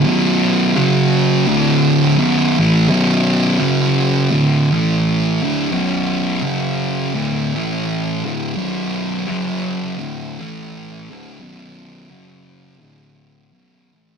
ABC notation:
X:1
M:4/4
L:1/8
Q:"Swing" 1/4=85
K:Bm
V:1 name="Distorted electric guitar" clef=bass
[B,,,F,,B,,]2 [F,,C,F,]2 [D,,A,,D,]2 [B,,,F,,B,,] [A,,E,A,] | [B,,,F,,B,,]2 [F,,C,F,]2 [D,,A,,D,] [A,,E,A,]2 [D,,A,,D,] | [B,,,F,,B,,]2 [F,,C,F,]2 [D,,A,,D,] [A,,E,A,]2 [D,,A,,D,] | [B,,,F,,B,,]2 [F,,C,F,]2 [D,,A,,D,] [A,,E,A,]2 [D,,A,,D,] |
[B,,,F,,B,,]2 [F,,C,F,]2 [D,,A,,D,]2 [B,,,F,,B,,] [A,,E,A,] |]